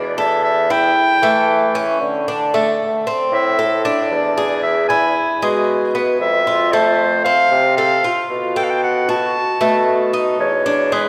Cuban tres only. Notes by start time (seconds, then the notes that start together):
Already playing: D4
0.18 A4
0.70 E4
1.23 A3
1.75 C#4
2.28 D4
2.54 A3
3.07 C4
3.59 A4
3.85 D4
4.38 G#4
4.90 E4
5.42 G#3
5.95 B3
6.47 F4
6.73 A3
7.26 C4
7.78 A4
8.04 F4
8.56 A4
9.09 F#4
9.61 A3
10.13 D#4
10.66 D4
10.92 G#3